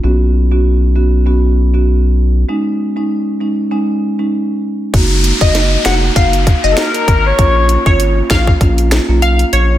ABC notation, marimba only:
X:1
M:4/4
L:1/16
Q:"Swing 16ths" 1/4=98
K:Gb
V:1 name="Marimba"
[=B,^C^F] z2 [B,CF]3 [B,CF]2 [B,CF] z2 [B,CF] z4 | [A,DE] z2 [A,DE]3 [A,DE]2 [A,DE] z2 [A,DE] z4 | [B,EG] z2 G3 [B,EG]2 [B,EG] z2 [B,EG] z4 | [B,DF] z2 [B,DF]3 z2 [B,DF] z2 [B,DF] z4 |]